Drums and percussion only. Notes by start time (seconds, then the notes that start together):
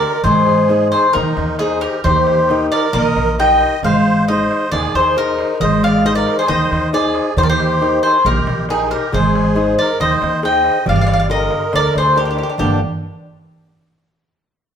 0.02 darbuka tek
0.13 darbuka tek
0.24 darbuka dum
0.36 darbuka tek
0.47 darbuka tek
0.58 darbuka tek
0.69 darbuka tek
0.92 darbuka tek
1.15 darbuka tek, darbuka dum
1.37 darbuka tek
1.59 darbuka tek
1.71 darbuka tek
1.82 darbuka tek
2.04 darbuka dum
2.16 darbuka tek
2.27 darbuka tek
2.38 darbuka tek
2.49 darbuka tek
2.72 darbuka tek
2.94 darbuka tek, darbuka dum
3.17 darbuka tek
3.39 darbuka tek
3.61 darbuka tek
3.72 darbuka tek
3.83 darbuka dum
3.94 darbuka tek
4.28 darbuka tek
4.51 darbuka tek
4.73 darbuka tek
4.95 darbuka tek
5.06 darbuka tek
5.17 darbuka tek
5.28 darbuka tek
5.39 darbuka tek
5.60 darbuka dum
5.83 darbuka tek
5.95 darbuka tek
6.06 darbuka tek
6.28 darbuka tek
6.50 darbuka tek, darbuka dum
6.72 darbuka tek
6.94 darbuka tek
7.05 darbuka tek
7.15 darbuka tek
7.27 darbuka tek
7.37 darbuka dum
7.49 darbuka tek
7.60 darbuka tek
7.72 darbuka tek
7.82 darbuka tek
8.04 darbuka tek
8.26 darbuka tek, darbuka dum
8.47 darbuka tek
8.69 darbuka tek
8.80 darbuka tek
8.91 darbuka tek
9.03 darbuka tek
9.14 darbuka dum
9.36 darbuka tek
9.46 darbuka tek
9.56 darbuka tek
9.78 darbuka tek
10.00 darbuka tek, darbuka dum
10.22 darbuka tek
10.43 darbuka tek
10.54 darbuka tek
10.64 darbuka tek
10.86 darbuka dum
10.97 darbuka tek
11.08 darbuka tek
11.30 darbuka tek
11.40 darbuka tek
11.50 darbuka tek
11.73 darbuka tek
11.94 darbuka tek
12.06 darbuka tek
12.16 darbuka tek
12.26 darbuka tek
12.37 darbuka tek
12.58 darbuka dum